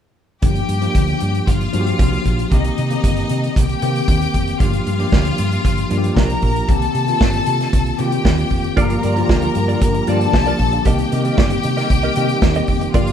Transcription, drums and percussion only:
0.42 kick, closed hi-hat
0.55 closed hi-hat
0.69 closed hi-hat
0.82 closed hi-hat
0.95 kick, closed hi-hat
1.08 closed hi-hat
1.20 closed hi-hat
1.35 closed hi-hat
1.47 kick, closed hi-hat
1.61 closed hi-hat
1.73 closed hi-hat
1.87 closed hi-hat
1.99 kick, closed hi-hat
2.13 closed hi-hat
2.25 kick, closed hi-hat
2.39 closed hi-hat
2.52 kick, closed hi-hat
2.65 closed hi-hat
2.78 closed hi-hat
2.91 closed hi-hat
3.04 kick, closed hi-hat
3.17 closed hi-hat
3.29 closed hi-hat
3.44 closed hi-hat
3.56 kick, closed hi-hat
3.69 closed hi-hat
3.82 closed hi-hat
3.96 closed hi-hat
4.08 kick, closed hi-hat
4.21 closed hi-hat
4.34 kick, closed hi-hat
4.48 closed hi-hat
4.60 kick, closed hi-hat
4.73 closed hi-hat
4.87 closed hi-hat
5.00 closed hi-hat
5.12 kick, snare
5.25 closed hi-hat
5.38 closed hi-hat
5.52 closed hi-hat
5.65 kick, closed hi-hat
5.78 closed hi-hat
5.91 closed hi-hat
6.04 closed hi-hat
6.17 kick, snare
6.30 closed hi-hat
6.42 kick, open hi-hat
6.56 closed hi-hat
6.69 kick, closed hi-hat
6.82 closed hi-hat
6.95 closed hi-hat
7.08 closed hi-hat
7.21 kick, snare
7.34 closed hi-hat
7.46 closed hi-hat
7.61 snare, closed hi-hat
7.73 kick, closed hi-hat
7.86 closed hi-hat
7.99 closed hi-hat
8.12 closed hi-hat
8.25 kick, snare
8.38 closed hi-hat
8.50 kick, open hi-hat
8.64 closed hi-hat
8.77 kick, closed hi-hat
8.90 closed hi-hat
9.03 closed hi-hat
9.17 closed hi-hat
9.29 kick, snare
9.42 closed hi-hat
9.55 closed hi-hat
9.69 closed hi-hat
9.82 kick, closed hi-hat
9.94 closed hi-hat
10.07 closed hi-hat
10.21 closed hi-hat
10.33 kick, snare
10.47 closed hi-hat
10.59 kick, open hi-hat
10.73 closed hi-hat
10.85 kick, closed hi-hat
10.98 closed hi-hat
11.12 closed hi-hat
11.25 closed hi-hat
11.38 kick, snare
11.50 closed hi-hat
11.63 closed hi-hat
11.78 snare, closed hi-hat
11.90 kick, closed hi-hat
12.03 closed hi-hat
12.16 closed hi-hat
12.29 closed hi-hat
12.42 kick, snare
12.55 closed hi-hat
12.67 kick, open hi-hat
12.81 closed hi-hat
12.94 kick, closed hi-hat
13.07 closed hi-hat

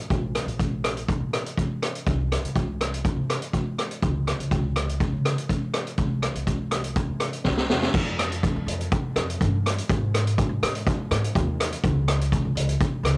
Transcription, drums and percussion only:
0.10 kick, closed hi-hat
0.35 cross-stick, closed hi-hat
0.48 closed hi-hat
0.59 kick, closed hi-hat
0.84 cross-stick, closed hi-hat
0.97 closed hi-hat
1.08 kick, closed hi-hat
1.33 cross-stick, closed hi-hat
1.46 closed hi-hat
1.58 kick, closed hi-hat
1.83 cross-stick, closed hi-hat
1.95 closed hi-hat
2.07 kick, closed hi-hat
2.32 cross-stick, closed hi-hat
2.45 closed hi-hat
2.56 kick, closed hi-hat
2.81 cross-stick, closed hi-hat
2.94 closed hi-hat
3.05 kick, closed hi-hat
3.30 cross-stick, closed hi-hat
3.42 closed hi-hat
3.53 kick, closed hi-hat
3.79 cross-stick, closed hi-hat
3.91 closed hi-hat
4.03 kick, closed hi-hat
4.27 cross-stick, closed hi-hat
4.40 closed hi-hat
4.51 kick, closed hi-hat
4.76 cross-stick, closed hi-hat
4.89 closed hi-hat
5.00 kick, closed hi-hat
5.25 cross-stick, closed hi-hat
5.38 closed hi-hat
5.49 kick, closed hi-hat
5.74 cross-stick, closed hi-hat
5.87 closed hi-hat
5.98 kick, closed hi-hat
6.22 cross-stick, closed hi-hat
6.35 closed hi-hat
6.47 kick, closed hi-hat
6.71 cross-stick, closed hi-hat
6.84 closed hi-hat
6.96 kick, closed hi-hat
7.20 cross-stick, closed hi-hat
7.33 closed hi-hat
7.44 kick, snare
7.57 snare
7.70 snare
7.83 snare
7.94 kick, crash
8.19 cross-stick, closed hi-hat
8.32 closed hi-hat
8.43 kick, closed hi-hat
8.68 closed hi-hat
8.81 closed hi-hat
8.92 kick, closed hi-hat
9.16 cross-stick, closed hi-hat
9.30 closed hi-hat
9.41 kick, closed hi-hat
9.66 cross-stick, closed hi-hat
9.78 closed hi-hat
9.89 kick, closed hi-hat
10.14 cross-stick, closed hi-hat
10.27 closed hi-hat
10.38 kick, closed hi-hat
10.63 cross-stick, closed hi-hat
10.75 closed hi-hat
10.87 kick, closed hi-hat
11.11 cross-stick, closed hi-hat
11.24 closed hi-hat
11.35 kick, closed hi-hat
11.60 cross-stick, closed hi-hat
11.72 closed hi-hat
11.84 kick, closed hi-hat
12.08 cross-stick, closed hi-hat
12.21 closed hi-hat
12.32 kick, closed hi-hat
12.57 closed hi-hat
12.69 closed hi-hat
12.81 kick, closed hi-hat
13.05 cross-stick, closed hi-hat

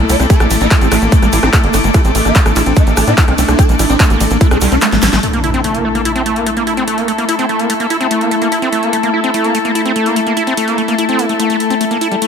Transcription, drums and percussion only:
0.09 open hi-hat, ride, shaker
0.20 cross-stick, closed hi-hat, shaker
0.30 kick, closed hi-hat, ride, shaker
0.40 cross-stick, closed hi-hat, shaker
0.51 open hi-hat, ride, shaker
0.61 closed hi-hat, shaker
0.71 kick, cross-stick, clap, closed hi-hat, ride, shaker
0.81 closed hi-hat, shaker
0.92 cross-stick, clap, open hi-hat, ride, shaker
1.02 closed hi-hat, shaker
1.12 kick, closed hi-hat, ride, shaker
1.22 cross-stick, closed hi-hat, shaker
1.33 open hi-hat, ride, shaker
1.43 cross-stick, closed hi-hat, shaker
1.53 kick, clap, closed hi-hat, ride, shaker
1.64 closed hi-hat
1.74 cross-stick, open hi-hat, ride, shaker
1.84 closed hi-hat, shaker
1.94 kick, cross-stick, closed hi-hat, ride, shaker
2.04 closed hi-hat, shaker
2.15 open hi-hat, ride, shaker
2.25 cross-stick, closed hi-hat, shaker
2.35 kick, clap, closed hi-hat, ride, shaker
2.46 cross-stick, closed hi-hat, shaker
2.56 clap, open hi-hat, ride, shaker
2.66 closed hi-hat, shaker
2.76 kick, cross-stick, closed hi-hat, ride, shaker
2.87 closed hi-hat, shaker
2.97 cross-stick, open hi-hat, ride, shaker
3.07 closed hi-hat, shaker
3.17 kick, clap, closed hi-hat, ride, shaker
3.28 cross-stick, closed hi-hat
3.38 open hi-hat, ride, shaker
3.48 cross-stick, closed hi-hat, shaker
3.59 kick, closed hi-hat, ride, shaker
3.69 closed hi-hat, shaker
3.79 cross-stick, open hi-hat, ride, shaker
3.90 closed hi-hat, shaker
4.00 kick, cross-stick, clap, closed hi-hat, ride, shaker
4.10 closed hi-hat, shaker
4.20 open hi-hat, ride, shaker
4.30 closed hi-hat, shaker
4.41 kick, closed hi-hat, ride, shaker
4.51 cross-stick, closed hi-hat, shaker
4.61 open hi-hat, ride, shaker
4.71 closed hi-hat, shaker
4.81 cross-stick, clap, closed hi-hat, ride, shaker
4.92 snare, closed hi-hat, shaker
5.02 snare, open hi-hat, ride, shaker
5.13 snare, closed hi-hat, shaker
5.23 closed hi-hat
5.33 closed hi-hat
5.44 closed hi-hat
5.54 closed hi-hat
5.64 closed hi-hat
5.75 closed hi-hat
5.95 closed hi-hat
6.05 closed hi-hat
6.16 closed hi-hat
6.26 closed hi-hat
6.36 closed hi-hat
6.46 closed hi-hat
6.57 closed hi-hat
6.67 closed hi-hat
6.77 closed hi-hat
6.88 closed hi-hat
6.98 closed hi-hat
7.08 closed hi-hat
7.18 closed hi-hat
7.29 closed hi-hat
7.39 closed hi-hat
7.49 closed hi-hat
7.59 closed hi-hat
7.70 closed hi-hat
7.80 closed hi-hat
7.90 closed hi-hat
8.01 closed hi-hat
8.11 closed hi-hat
8.21 closed hi-hat
8.31 closed hi-hat
8.42 closed hi-hat
8.52 closed hi-hat
8.62 closed hi-hat
8.72 closed hi-hat
8.83 closed hi-hat
8.93 closed hi-hat
9.03 closed hi-hat
9.24 closed hi-hat
9.34 closed hi-hat
9.44 closed hi-hat
9.55 closed hi-hat
9.65 closed hi-hat
9.75 closed hi-hat
9.86 closed hi-hat
9.96 closed hi-hat
10.06 closed hi-hat
10.16 closed hi-hat
10.27 closed hi-hat
10.37 closed hi-hat
10.47 closed hi-hat
10.57 closed hi-hat
10.68 closed hi-hat
10.78 closed hi-hat
10.88 closed hi-hat
10.98 closed hi-hat
11.09 closed hi-hat
11.19 closed hi-hat
11.29 closed hi-hat
11.40 closed hi-hat
11.50 closed hi-hat
11.60 closed hi-hat
11.70 closed hi-hat
11.81 closed hi-hat
11.91 closed hi-hat
12.01 closed hi-hat
12.12 closed hi-hat
12.22 closed hi-hat

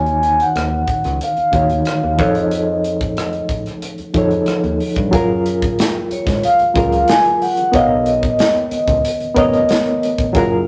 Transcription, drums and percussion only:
0.06 closed hi-hat
0.23 closed hi-hat
0.40 closed hi-hat
0.56 cross-stick, closed hi-hat
0.88 kick, closed hi-hat
1.04 cross-stick, closed hi-hat
1.21 closed hi-hat
1.37 closed hi-hat
1.53 kick, closed hi-hat
1.70 closed hi-hat
1.85 cross-stick, closed hi-hat
2.19 kick, closed hi-hat
2.35 closed hi-hat
2.51 closed hi-hat
2.84 closed hi-hat
3.01 kick, closed hi-hat
3.17 cross-stick, closed hi-hat
3.33 closed hi-hat
3.49 kick, closed hi-hat
3.66 cross-stick, closed hi-hat
3.82 closed hi-hat
3.98 closed hi-hat
4.14 kick, closed hi-hat
4.31 closed hi-hat
4.46 cross-stick, closed hi-hat
4.64 closed hi-hat
4.80 open hi-hat
4.96 kick, closed hi-hat
5.13 kick, closed hi-hat
5.46 closed hi-hat
5.62 kick, closed hi-hat
5.79 snare, closed hi-hat
6.11 closed hi-hat
6.27 kick, snare, closed hi-hat
6.43 closed hi-hat
6.59 closed hi-hat
6.76 kick, closed hi-hat
6.92 closed hi-hat
7.08 snare, closed hi-hat
7.25 closed hi-hat
7.42 open hi-hat
7.57 closed hi-hat
7.73 kick, closed hi-hat
8.06 closed hi-hat
8.23 kick, closed hi-hat
8.39 snare, closed hi-hat
8.55 closed hi-hat
8.71 closed hi-hat
8.88 kick, closed hi-hat
9.05 closed hi-hat
9.20 closed hi-hat
9.36 kick, closed hi-hat
9.53 closed hi-hat
9.69 snare, closed hi-hat
9.86 closed hi-hat
10.03 closed hi-hat
10.18 kick, closed hi-hat
10.35 kick, closed hi-hat

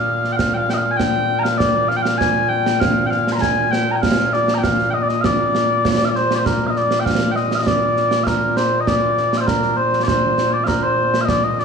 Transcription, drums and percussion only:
0.24 snare
0.39 concert bass drum, snare
0.70 snare
1.00 concert bass drum, snare
1.45 snare
1.60 concert bass drum, snare
1.91 snare
2.05 snare
2.21 concert bass drum, snare
2.66 snare
2.81 concert bass drum, snare
3.12 snare
3.27 snare
3.42 concert bass drum, snare
3.73 snare
4.03 concert bass drum, snare
4.33 snare
4.48 snare
4.64 concert bass drum, snare
4.79 snare
5.09 snare
5.24 concert bass drum, snare
5.55 snare
5.85 concert bass drum, snare
6.16 snare
6.31 snare
6.46 concert bass drum, snare
6.76 snare
6.91 snare
7.06 concert bass drum, snare
7.36 snare
7.51 snare
7.67 concert bass drum, snare
7.97 snare
8.11 snare
8.27 concert bass drum, snare
8.57 snare
8.87 concert bass drum, snare
9.18 snare
9.33 snare
9.48 concert bass drum, snare
9.63 snare
9.93 snare
10.08 concert bass drum, snare
10.38 snare
10.68 concert bass drum, snare
11.14 snare
11.29 concert bass drum, snare
11.60 snare

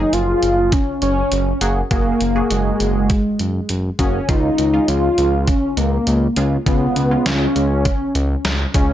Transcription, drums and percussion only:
0.13 closed hi-hat
0.43 closed hi-hat
0.72 kick, closed hi-hat
1.02 closed hi-hat
1.32 closed hi-hat
1.61 closed hi-hat
1.91 kick, closed hi-hat
2.21 closed hi-hat
2.50 closed hi-hat
2.80 closed hi-hat
3.10 kick, closed hi-hat
3.39 closed hi-hat
3.69 closed hi-hat
3.99 kick, closed hi-hat
4.29 kick, closed hi-hat
4.58 closed hi-hat
4.88 closed hi-hat
5.18 closed hi-hat
5.47 kick, closed hi-hat
5.77 closed hi-hat
6.07 closed hi-hat
6.36 closed hi-hat
6.66 kick, closed hi-hat
6.96 closed hi-hat
7.26 snare, closed hi-hat
7.56 closed hi-hat
7.85 kick, closed hi-hat
8.15 closed hi-hat
8.45 snare, closed hi-hat
8.74 kick, closed hi-hat

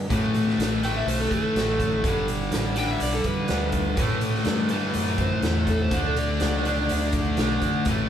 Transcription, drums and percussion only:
0.10 kick, closed hi-hat
0.34 closed hi-hat
0.49 snare
0.60 snare, closed hi-hat
0.83 closed hi-hat
1.08 closed hi-hat
1.31 kick, closed hi-hat
1.56 snare, closed hi-hat
1.80 kick, closed hi-hat
2.04 kick, closed hi-hat
2.28 closed hi-hat
2.52 snare, closed hi-hat
2.76 closed hi-hat
3.00 closed hi-hat
3.24 kick, closed hi-hat
3.48 snare, closed hi-hat
3.72 kick, closed hi-hat
3.97 kick, closed hi-hat
4.21 closed hi-hat
4.34 snare
4.45 snare, closed hi-hat
4.69 closed hi-hat
4.94 closed hi-hat
5.18 kick, closed hi-hat
5.42 snare, closed hi-hat
5.67 kick, closed hi-hat
5.91 kick, closed hi-hat
6.17 closed hi-hat
6.40 snare, closed hi-hat
6.65 closed hi-hat
6.89 closed hi-hat
7.12 kick, closed hi-hat
7.37 snare, closed hi-hat
7.62 kick, closed hi-hat
7.85 kick, closed hi-hat

